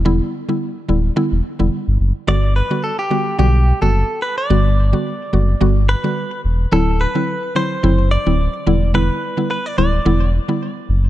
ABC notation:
X:1
M:4/4
L:1/16
Q:"Swing 16ths" 1/4=108
K:G
V:1 name="Clean electric guitar"
z16 | d2 B2 A G3 G3 A3 B d- | d8- d2 B4 z2 | A2 B4 c4 d6 |
B4 B d d4 z6 |]
V:2 name="Synth pluck"
[D,G,B,E]3 [D,G,B,E] z2 [D,G,B,E]2 [D,G,B,E]2 z [D,G,B,E] z4 | [D,G,B,F]3 [D,G,B,F] z2 [D,G,B,F]2 [D,G,B,F]2 z [D,G,B,F] z4 | [D,G,B,F]3 [D,G,B,F] z2 [D,G,B,F]2 [D,G,B,F]2 z [D,G,B,F] z4 | [D,F,CE]3 [D,F,CE] z2 [D,F,CE]2 [D,F,CE]2 z [D,F,CE] z2 [D,G,B,E]2 |
[D,G,B,E]3 [D,G,B,E] z2 [D,G,B,E]2 [D,G,B,E]2 z [D,G,B,E] z4 |]
V:3 name="Sub bass" clef=bass
E,,,2 z4 D,,,2 z E,,, z E,,, z G,,, F,,, z | G,,,3 z4 z B,,,3 F,,,2 z3 | G,,,4 z2 F,,,2 G,,,3 z3 E,,,2 | D,,,3 z4 z F,,,3 D,,,2 z E,,,2- |
E,,,2 z4 D,,,2 E,,,3 z3 F,,,2 |]